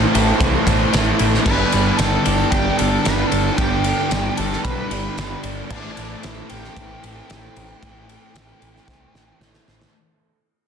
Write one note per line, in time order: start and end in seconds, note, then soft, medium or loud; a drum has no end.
0.00 0.13 A2 loud
0.00 0.39 A2 medium
0.00 0.13 E3 loud
0.00 0.40 E3 medium
0.00 0.66 E3 medium
0.00 0.12 A3 loud
0.00 0.14 A3 medium
0.00 0.41 A3 medium
0.00 0.15 C4 medium
0.00 0.39 C4 medium
0.00 0.14 E4 medium
0.00 0.13 G4 medium
0.00 0.12 A4 medium
0.13 0.31 A1 loud
0.13 0.92 A2 medium
0.13 0.93 E3 medium
0.13 0.92 A3 medium
0.13 0.68 C4 medium
0.13 0.67 E4 medium
0.13 2.25 G4 medium
0.13 0.64 A4 medium
0.13 ride medium
0.40 0.57 C2 medium
0.40 0.93 A2 medium
0.40 0.69 E3 loud
0.40 0.67 A3 loud
0.40 1.18 C4 medium
0.40 kick loud
0.40 ride medium
0.66 0.84 A1 medium
0.66 1.47 E3 medium
0.66 0.95 A3 medium
0.66 0.93 C4 medium
0.66 0.93 E4 medium
0.66 0.94 A4 medium
0.66 kick medium
0.66 ride medium
0.70 0.94 E3 medium
0.92 1.11 A1 loud
0.92 1.45 A2 medium
0.92 1.44 E3 medium
0.92 1.46 E3 medium
0.92 1.46 A3 medium
0.92 1.45 C4 medium
0.92 1.46 E4 medium
0.92 1.46 A4 medium
0.92 snare loud
0.92 ride medium
1.19 1.37 A1 medium
1.19 1.46 C4 medium
1.19 ride medium
1.34 snare soft
1.45 1.63 G1 loud
1.45 1.99 G2 loud
1.45 3.58 G2 medium
1.45 2.00 D3 medium
1.45 1.99 D3 medium
1.45 1.75 G3 medium
1.45 2.00 G3 loud
1.45 1.71 B3 medium
1.45 1.75 B3 medium
1.45 1.74 D4 loud
1.45 1.73 G4 loud
1.45 1.97 B4 loud
1.45 kick loud
1.45 crash loud
1.72 1.90 G1 medium
1.72 1.99 G3 medium
1.72 2.77 B3 medium
1.72 2.00 B3 medium
1.72 2.01 D4 medium
1.72 2.02 G4 medium
1.72 ride medium
1.97 2.16 G1 loud
1.97 2.50 G2 medium
1.97 2.51 D3 medium
1.97 2.29 G3 medium
1.97 2.53 G3 medium
1.97 2.28 B3 medium
1.97 2.50 D4 medium
1.97 2.53 A4 medium
1.97 snare loud
1.97 ride loud
2.01 2.27 D4 medium
2.01 2.25 G4 medium
2.25 2.43 G1 loud
2.25 3.05 D3 medium
2.25 3.09 G3 medium
2.25 2.80 B3 medium
2.25 2.78 D4 medium
2.25 4.38 G4 medium
2.25 2.78 G4 medium
2.25 ride medium
2.29 3.04 G2 medium
2.29 2.81 G3 medium
2.50 2.69 G1 loud
2.50 3.04 G2 loud
2.50 2.79 D3 loud
2.50 2.78 G3 medium
2.50 3.32 D4 medium
2.50 2.79 G4 medium
2.50 kick loud
2.50 ride loud
2.77 2.96 G1 medium
2.77 3.05 D3 medium
2.77 3.07 G3 medium
2.77 3.04 B3 medium
2.77 3.05 D4 medium
2.77 3.07 G4 medium
2.77 3.02 A4 loud
2.77 ride medium
2.81 3.04 G3 medium
3.03 3.23 G1 loud
3.03 3.57 G2 medium
3.03 3.58 D3 medium
3.03 3.59 G3 medium
3.03 3.57 B3 medium
3.03 3.59 B3 medium
3.03 3.60 D4 medium
3.03 3.27 B4 loud
3.03 snare loud
3.03 ride loud
3.07 3.59 G3 medium
3.07 3.61 G4 medium
3.28 3.57 A4 medium
3.32 3.49 G1 medium
3.32 4.10 D4 medium
3.32 ride medium
3.54 4.38 G4 medium
3.58 3.92 G1 loud
3.58 4.10 G2 loud
3.58 4.12 G2 medium
3.58 4.10 D3 medium
3.58 4.12 D3 medium
3.58 4.12 G3 loud
3.58 3.87 G3 loud
3.58 3.83 B3 medium
3.58 3.85 B3 medium
3.58 3.84 D4 medium
3.58 3.84 G4 medium
3.58 kick loud
3.58 ride loud
3.84 4.10 G3 medium
3.84 4.90 B3 medium
3.84 4.11 B3 medium
3.84 4.12 D4 medium
3.84 4.14 G4 medium
3.84 ride medium
4.10 4.28 G1 loud
4.10 4.63 G2 medium
4.10 4.65 D3 medium
4.10 4.41 G3 medium
4.10 4.66 G3 medium
4.10 4.39 B3 medium
4.10 4.63 D4 medium
4.10 4.38 D4 medium
4.10 4.38 G4 medium
4.10 snare loud
4.10 ride loud
4.37 4.55 G1 medium
4.37 5.21 G3 medium
4.37 4.92 B3 medium
4.37 4.91 D4 medium
4.37 6.49 G4 medium
4.37 4.90 G4 medium
4.37 4.63 A4 medium
4.37 ride medium
4.41 5.17 G2 medium
4.41 5.18 D3 medium
4.41 4.93 G3 medium
4.53 snare soft
4.64 4.81 B1 loud
4.64 5.16 G2 medium
4.64 4.92 D3 medium
4.64 4.91 G3 loud
4.64 5.42 D4 medium
4.64 5.40 B4 medium
4.64 kick loud
4.64 ride medium
4.91 5.08 G1 medium
4.91 5.17 D3 medium
4.91 5.19 G3 medium
4.91 5.17 G3 medium
4.91 5.16 B3 medium
4.91 5.17 B3 medium
4.91 5.18 D4 medium
4.91 5.20 G4 medium
4.91 ride medium
5.17 5.34 G1 medium
5.17 5.69 G2 medium
5.17 5.69 D3 medium
5.17 5.70 G3 medium
5.17 5.71 G3 medium
5.17 5.70 B3 medium
5.17 5.69 B3 medium
5.17 5.70 D4 medium
5.17 5.72 G4 medium
5.17 snare loud
5.17 ride loud
5.44 5.60 G1 medium
5.44 5.70 D4 medium
5.44 ride medium
5.70 5.87 A1 loud
5.70 7.81 A2 medium
5.70 6.23 A2 medium
5.70 5.95 E3 medium
5.70 6.23 E3 loud
5.70 6.24 E3 loud
5.70 6.25 A3 loud
5.70 5.99 C4 loud
5.70 6.26 D4 loud
5.70 5.98 E4 loud
5.70 5.97 A4 loud
5.70 kick loud
5.70 crash loud
5.95 6.14 A1 medium
5.95 7.02 E3 medium
5.95 6.25 E4 medium
5.95 6.26 A4 medium
5.95 ride medium
6.00 6.24 C4 medium
6.23 6.41 A1 medium
6.23 6.77 A2 medium
6.23 7.29 E3 medium
6.23 6.78 E3 medium
6.23 6.79 A3 medium
6.23 6.76 C4 medium
6.23 6.53 C4 medium
6.23 6.49 E4 loud
6.23 6.51 E4 medium
6.23 6.49 A4 medium
6.23 snare loud
6.23 ride loud
6.49 6.67 A1 medium
6.49 7.31 E3 medium
6.49 7.33 A3 medium
6.49 7.04 C4 medium
6.49 7.03 E4 medium
6.49 9.37 G4 medium
6.49 8.61 G4 medium
6.49 7.02 A4 medium
6.49 ride medium
6.54 7.29 A2 medium
6.64 snare soft
6.76 6.93 A1 loud
6.76 7.29 A2 loud
6.76 7.06 E3 loud
6.76 7.03 A3 loud
6.76 7.52 C4 medium
6.76 kick loud
6.76 ride loud
7.02 7.20 A1 medium
7.02 7.81 E3 medium
7.02 7.31 E3 medium
7.02 7.31 A3 medium
7.02 7.30 C4 medium
7.02 7.31 E4 medium
7.02 7.32 A4 medium
7.02 ride medium
7.28 7.47 A1 medium
7.28 7.81 A2 medium
7.28 7.82 E3 medium
7.28 8.61 A3 medium
7.28 7.83 A3 medium
7.28 7.82 C4 medium
7.28 7.83 E4 medium
7.28 snare loud
7.28 ride loud
7.32 7.84 A4 medium
7.54 7.73 A1 medium
7.54 8.35 C4 medium
7.54 ride medium
7.82 8.16 A1 loud
7.82 8.35 A2 medium
7.82 8.33 A2 medium
7.82 8.07 E3 medium
7.82 8.34 E3 loud
7.82 8.35 E3 loud
7.82 8.35 A3 loud
7.82 8.11 C4 loud
7.82 8.09 E4 loud
7.82 8.08 A4 loud
7.82 kick loud
7.82 ride loud
8.08 9.13 E3 medium
8.08 8.35 C4 medium
8.08 8.36 E4 medium
8.08 8.37 A4 medium
8.08 ride medium
8.34 8.52 A1 loud
8.34 8.87 A2 medium
8.34 8.88 E3 medium
8.34 8.87 E3 medium
8.34 8.88 A3 medium
8.34 8.63 C4 medium
8.34 8.87 C4 medium
8.34 8.61 E4 medium
8.34 8.59 A4 medium
8.34 snare loud
8.34 ride loud
8.60 8.79 A1 medium
8.60 9.40 E3 medium
8.60 9.40 A3 medium
8.60 9.14 C4 medium
8.60 9.13 E4 medium
8.60 9.94 G4 medium
8.60 9.12 A4 medium
8.60 ride medium
8.65 9.38 A2 medium
8.76 snare soft
8.88 9.05 C2 loud
8.88 9.39 A2 loud
8.88 9.15 E3 loud
8.88 9.13 A3 loud
8.88 9.65 C4 medium
8.88 kick loud
8.88 snare medium
9.13 9.31 A1 medium
9.13 9.94 E3 medium
9.13 9.40 E3 medium
9.13 9.41 A3 medium
9.13 9.40 C4 medium
9.13 9.41 E4 medium
9.13 9.42 A4 medium
9.13 snare medium
9.40 9.57 A1 medium
9.40 9.92 A2 medium
9.40 9.92 E3 medium
9.40 9.93 E3 medium
9.40 9.94 A3 medium
9.40 9.93 A3 medium
9.40 9.92 C4 medium
9.40 9.93 E4 medium
9.40 9.93 A4 medium
9.40 snare medium
9.54 snare medium
9.66 9.84 A1 medium
9.66 9.94 C4 medium
9.66 snare loud
9.81 snare loud